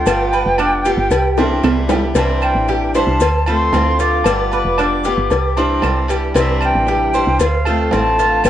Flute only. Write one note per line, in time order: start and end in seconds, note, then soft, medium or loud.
0.00 1.91 G5 loud
2.18 2.24 A5 medium
2.43 2.92 G5 medium
2.96 3.44 A5 medium
3.47 4.02 C6 loud
4.00 4.52 D6 loud
4.52 6.06 D6 loud
6.37 6.61 E5 loud
6.64 7.37 G5 medium
7.41 7.90 F5 loud
7.93 8.47 A5 loud
8.46 8.50 G5 loud